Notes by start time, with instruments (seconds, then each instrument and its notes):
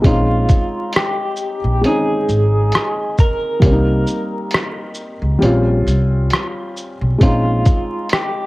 0.02 upright bass A#1, felt piano G#3 C4 C#4, kick, closed hi-hat
0.07 felt piano D#4, clean electric guitar F4
0.49 kick, closed hi-hat, shaker
0.93 clean electric guitar G4, cross-stick, closed hi-hat
1.36 shaker
1.64 upright bass A#1
1.81 felt piano G#3 C4, closed hi-hat
1.85 felt piano C#4 D#4, clean electric guitar G#4
2.29 upright bass G#1, shaker
2.72 cross-stick, closed hi-hat
3.18 clean electric guitar A#4, kick, shaker
3.60 upright bass C2, felt piano G3 A#3 C4, kick, closed hi-hat
3.66 felt piano C#4
3.72 felt piano D#4
4.07 shaker
4.51 cross-stick, closed hi-hat
4.95 shaker
5.22 upright bass C#2
5.39 upright bass A#1, felt piano G3 C4, closed hi-hat
5.43 felt piano C#4 F4
5.87 upright bass C2, closed hi-hat, shaker
6.30 cross-stick, closed hi-hat
6.77 shaker
7.01 upright bass B1
7.18 upright bass A#1, felt piano G#3 C4, kick, closed hi-hat
7.23 felt piano C#4 D#4, clean electric guitar F4
7.65 kick, closed hi-hat, shaker
8.09 clean electric guitar G4, cross-stick, closed hi-hat